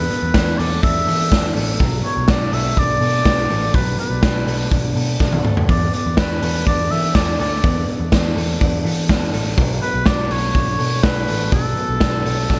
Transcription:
Already playing: clean electric guitar B3 D4 A4, oboe B4
0.10 clean electric guitar B3, hi-hat pedal, open hi-hat
0.22 picked electric bass E2
0.34 picked electric bass E2, clean electric guitar D4, kick, snare, hi-hat pedal, open hi-hat
0.58 picked electric bass E2, clean electric guitar A4, oboe D5, hi-hat pedal, open hi-hat
0.83 picked electric bass E2, clean electric guitar D4, oboe E5, kick, hi-hat pedal, open hi-hat
1.07 picked electric bass E3, clean electric guitar A4, hi-hat pedal, open hi-hat
1.32 picked electric bass E2, clean electric guitar D4, kick, snare, hi-hat pedal, open hi-hat
1.56 picked electric bass A1, clean electric guitar A4, hi-hat pedal, open hi-hat
1.80 picked electric bass B1, clean electric guitar F#3, kick, hi-hat pedal, open hi-hat
2.04 clean electric guitar B3, oboe C#5, hi-hat pedal, open hi-hat
2.17 picked electric bass B1
2.28 clean electric guitar D4, oboe D5, kick, snare, hi-hat pedal, open hi-hat
2.52 picked electric bass B1, clean electric guitar A4, oboe E5, hi-hat pedal, open hi-hat
2.76 picked electric bass B1, clean electric guitar D4, oboe D5, kick, hi-hat pedal, open hi-hat
3.01 picked electric bass B2, clean electric guitar A4, hi-hat pedal, open hi-hat
3.25 picked electric bass B1, clean electric guitar D4, kick, snare, hi-hat pedal, open hi-hat
3.49 picked electric bass A1, clean electric guitar A4, hi-hat pedal, open hi-hat
3.74 picked electric bass B1, clean electric guitar F#3, oboe B4, kick, hi-hat pedal, open hi-hat
3.98 clean electric guitar B3, oboe B4, hi-hat pedal, open hi-hat
4.10 picked electric bass B1
4.22 clean electric guitar D4, kick, snare, hi-hat pedal, open hi-hat
4.46 picked electric bass B1, clean electric guitar A4, hi-hat pedal, open hi-hat
4.71 picked electric bass B1, clean electric guitar D4, kick, hi-hat pedal, open hi-hat
4.96 picked electric bass B2, clean electric guitar A4, hi-hat pedal, open hi-hat
5.20 picked electric bass B1, clean electric guitar D4, kick, snare
5.32 high tom
5.45 picked electric bass D2, clean electric guitar A4, mid tom
5.57 floor tom
5.69 picked electric bass E2, clean electric guitar B3, oboe D5, kick, hi-hat pedal, open hi-hat
5.93 clean electric guitar B3, oboe D5, hi-hat pedal, open hi-hat
6.06 picked electric bass E2
6.17 clean electric guitar D4, oboe B4, kick, snare, hi-hat pedal, open hi-hat
6.42 picked electric bass E2, clean electric guitar A4, hi-hat pedal, open hi-hat
6.67 picked electric bass E2, clean electric guitar D4, oboe D5, kick, hi-hat pedal, open hi-hat
6.91 picked electric bass E3, clean electric guitar A4, oboe E5, hi-hat pedal, open hi-hat
7.15 picked electric bass E2, clean electric guitar D4, oboe D5, kick, snare, hi-hat pedal, open hi-hat
7.39 picked electric bass D2, clean electric guitar A4, oboe D5, hi-hat pedal, open hi-hat
7.63 picked electric bass E2, clean electric guitar B3, kick, hi-hat pedal, open hi-hat
7.87 clean electric guitar B3, hi-hat pedal, open hi-hat
8.00 picked electric bass E2
8.12 picked electric bass E2, clean electric guitar D4, kick, snare, hi-hat pedal, open hi-hat
8.36 picked electric bass E2, clean electric guitar A4, hi-hat pedal, open hi-hat
8.60 picked electric bass E2, clean electric guitar D4, kick, hi-hat pedal, open hi-hat
8.84 picked electric bass E3, clean electric guitar A4, hi-hat pedal, open hi-hat
9.08 picked electric bass E2, clean electric guitar D4, kick, snare
9.33 picked electric bass A1, clean electric guitar A4, hi-hat pedal, open hi-hat
9.57 picked electric bass B1, clean electric guitar F#3, kick, hi-hat pedal, open hi-hat
9.81 clean electric guitar B3, oboe B4, hi-hat pedal, open hi-hat
9.94 picked electric bass B1
10.05 picked electric bass B1, clean electric guitar D4, oboe D5, kick, snare, hi-hat pedal, open hi-hat
10.30 picked electric bass B1, clean electric guitar A4, oboe C#5, hi-hat pedal, open hi-hat
10.54 picked electric bass B1, clean electric guitar D4, kick, hi-hat pedal, open hi-hat
10.79 picked electric bass B2, clean electric guitar A4, hi-hat pedal, open hi-hat
11.03 picked electric bass B1, clean electric guitar D4, oboe B4, kick, snare, hi-hat pedal, open hi-hat
11.28 picked electric bass A1, clean electric guitar A4, hi-hat pedal, open hi-hat
11.52 picked electric bass B1, clean electric guitar F#3, oboe A4, kick, hi-hat pedal, open hi-hat
11.77 clean electric guitar B3, hi-hat pedal, open hi-hat
11.89 picked electric bass B1
12.00 picked electric bass B1, clean electric guitar D4, kick, snare, hi-hat pedal, open hi-hat
12.25 picked electric bass B1, clean electric guitar A4, hi-hat pedal, open hi-hat
12.50 picked electric bass B1, clean electric guitar D4, kick, snare

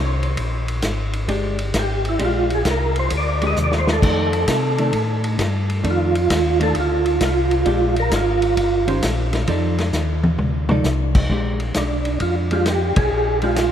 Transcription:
Already playing: tonewheel organ C2
0.23 ride
0.37 tonewheel organ A#1, kick, ride
0.68 ride
0.82 tonewheel organ G#1, kick, snare, hi-hat pedal, ride
1.13 ride
1.28 tonewheel organ G1, hollow-body jazz guitar G#3 D4 G4, kick, ride
1.59 ride
1.74 tonewheel organ G#1, kick, snare, hi-hat pedal, ride
1.79 tonewheel organ G4
2.05 ride
2.09 tonewheel organ E4
2.19 tonewheel organ A#1, hollow-body jazz guitar G#3 D4 G4, kick, ride
2.25 tonewheel organ F4
2.50 ride
2.55 tonewheel organ G#4
2.65 tonewheel organ C2, kick, snare, hi-hat pedal, ride
2.70 tonewheel organ A#4
2.96 tonewheel organ C5, ride
3.10 tonewheel organ D2, kick, ride
3.17 tonewheel organ D5
3.42 hollow-body jazz guitar G#3 D4 G4, ride
3.47 tonewheel organ D#5
3.56 tonewheel organ D#2, hi-hat pedal, mid tom
3.64 tonewheel organ D5
3.72 snare
3.78 tonewheel organ C5
3.87 snare
3.93 tonewheel organ A4
4.02 tonewheel organ F2, hollow-body jazz guitar D#3 A3 D4, kick, crash
4.33 ride
4.48 tonewheel organ C3, kick, snare, hi-hat pedal, ride
4.78 hollow-body jazz guitar D#3 A3 D4, ride
4.93 tonewheel organ A2, kick, ride
5.24 ride
5.39 tonewheel organ G2, kick, snare, hi-hat pedal, ride
5.70 ride
5.84 tonewheel organ F2, hollow-body jazz guitar D#3 A3 D4, kick, ride
5.90 tonewheel organ F4
6.15 ride
6.30 tonewheel organ D#2, kick, snare, hi-hat pedal, ride
6.60 hollow-body jazz guitar D#3 A3 D4, tonewheel organ A4, ride
6.75 tonewheel organ D2, kick, ride
6.80 tonewheel organ F4
7.06 ride
7.20 tonewheel organ C2, kick, snare, hi-hat pedal, ride
7.26 tonewheel organ F4
7.51 ride
7.66 tonewheel organ A#1, hollow-body jazz guitar G#3 D4 G4, kick, ride
7.96 tonewheel organ A#4, ride
8.11 tonewheel organ G#1, kick, snare, hi-hat pedal, ride
8.16 tonewheel organ F4
8.42 ride
8.57 tonewheel organ G1, kick, ride
8.88 hollow-body jazz guitar D#3 C#4 G4 C5, ride
9.02 tonewheel organ A#1, kick, snare, hi-hat pedal, ride
9.33 snare, ride
9.47 tonewheel organ F2, hollow-body jazz guitar F3 D#4 A4 D5, kick, ride
9.78 snare, ride
9.93 tonewheel organ D#2, snare, hi-hat pedal
10.24 high tom
10.39 tonewheel organ D2, mid tom
10.69 hollow-body jazz guitar F3 D#4 A4 D5, mid tom
10.84 tonewheel organ C2, snare, hi-hat pedal
11.15 kick, crash
11.30 tonewheel organ A#1, hollow-body jazz guitar G#3 D4 G4, kick
11.60 ride
11.74 tonewheel organ B1 D4, snare, hi-hat pedal, ride
12.05 ride
12.20 tonewheel organ F2 F4, kick, ride
12.51 hollow-body jazz guitar G#3 D4 G4, tonewheel organ F4, ride
12.66 tonewheel organ G4, snare, hi-hat pedal, ride
12.96 tonewheel organ B1 G#4, kick, ride
13.12 tonewheel organ A#1
13.42 hollow-body jazz guitar G#3 D4 G4, tonewheel organ F4, ride
13.56 snare, hi-hat pedal, ride

